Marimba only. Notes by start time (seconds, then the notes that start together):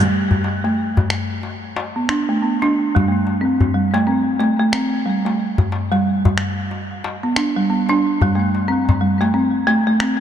0.00 G3
0.64 A3
1.96 B3
2.09 D4
2.29 A3
2.43 B3
2.62 D4
2.95 G3
3.08 A3
3.41 C4
3.74 G3
3.94 A3
4.07 C4
4.40 A3
4.60 A3
4.73 C4
5.06 G3
5.25 A3
5.92 G3
7.23 B3
7.37 D4
7.56 G3
7.70 B3
7.89 D4
8.22 G3
8.35 A3
8.68 C4
9.01 G3
9.21 A3
9.34 C4
9.67 A3
9.87 A3
10.00 C4